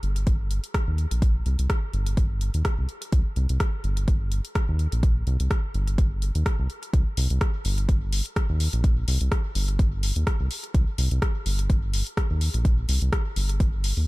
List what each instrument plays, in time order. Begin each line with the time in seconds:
0.03 analog synth bass G1, closed hi-hat
0.16 closed hi-hat
0.27 kick, closed hi-hat
0.51 closed hi-hat
0.64 closed hi-hat
0.74 kick, cross-stick, closed hi-hat
0.87 analog synth bass D#2
0.98 closed hi-hat
1.11 analog synth bass A#1, closed hi-hat
1.22 kick, closed hi-hat
1.46 analog synth bass C2, closed hi-hat
1.59 analog synth bass C2, closed hi-hat
1.70 kick, cross-stick, closed hi-hat
1.93 analog synth bass G1, closed hi-hat
2.06 closed hi-hat
2.17 kick, closed hi-hat
2.41 closed hi-hat
2.54 analog synth bass D#2, closed hi-hat
2.65 kick, cross-stick, closed hi-hat
2.78 analog synth bass C2
2.89 closed hi-hat
3.02 closed hi-hat
3.12 analog synth bass C2, kick, closed hi-hat
3.36 analog synth bass C2, closed hi-hat
3.49 analog synth bass C2, closed hi-hat
3.60 kick, cross-stick, closed hi-hat
3.84 analog synth bass G1, closed hi-hat
3.97 closed hi-hat
4.08 kick, closed hi-hat
4.32 closed hi-hat
4.45 closed hi-hat
4.55 kick, cross-stick, closed hi-hat
4.69 analog synth bass D#2
4.79 closed hi-hat
4.92 analog synth bass A#1, closed hi-hat
5.03 kick, closed hi-hat
5.27 analog synth bass C2, closed hi-hat
5.40 analog synth bass C2, closed hi-hat
5.51 kick, cross-stick, closed hi-hat
5.74 analog synth bass G1, closed hi-hat
5.88 closed hi-hat
5.98 kick, closed hi-hat
6.22 closed hi-hat
6.35 analog synth bass D#2, closed hi-hat
6.46 kick, cross-stick, closed hi-hat
6.59 analog synth bass C2
6.70 closed hi-hat
6.83 closed hi-hat
6.93 analog synth bass C2, kick, closed hi-hat
7.17 analog synth bass C2, open hi-hat
7.30 analog synth bass C2, closed hi-hat
7.41 kick, cross-stick, closed hi-hat
7.65 analog synth bass G1, open hi-hat
7.78 closed hi-hat
7.89 kick, closed hi-hat
8.13 open hi-hat
8.26 closed hi-hat
8.36 kick, cross-stick, closed hi-hat
8.49 analog synth bass D#2
8.60 open hi-hat
8.73 analog synth bass A#1, closed hi-hat
8.84 kick, closed hi-hat
9.08 analog synth bass C2, open hi-hat
9.21 analog synth bass C2, closed hi-hat
9.32 kick, cross-stick, closed hi-hat
9.55 analog synth bass G1, open hi-hat
9.68 closed hi-hat
9.79 kick, closed hi-hat
10.03 open hi-hat
10.16 analog synth bass D#2, closed hi-hat
10.27 kick, cross-stick, closed hi-hat
10.40 analog synth bass C2
10.51 open hi-hat
10.64 closed hi-hat
10.74 analog synth bass C2, kick, closed hi-hat
10.98 analog synth bass C2, open hi-hat
11.11 analog synth bass C2, closed hi-hat
11.22 kick, cross-stick, closed hi-hat
11.46 analog synth bass G1, open hi-hat
11.59 closed hi-hat
11.70 kick, closed hi-hat
11.94 open hi-hat
12.07 closed hi-hat
12.17 kick, cross-stick, closed hi-hat
12.30 analog synth bass D#2
12.41 open hi-hat
12.54 analog synth bass A#1, closed hi-hat
12.65 kick, closed hi-hat
12.89 analog synth bass C2, open hi-hat
13.02 analog synth bass C2, closed hi-hat
13.13 kick, cross-stick, closed hi-hat
13.36 analog synth bass G1, open hi-hat
13.49 closed hi-hat
13.60 kick, closed hi-hat
13.84 open hi-hat
13.97 analog synth bass D#2, open hi-hat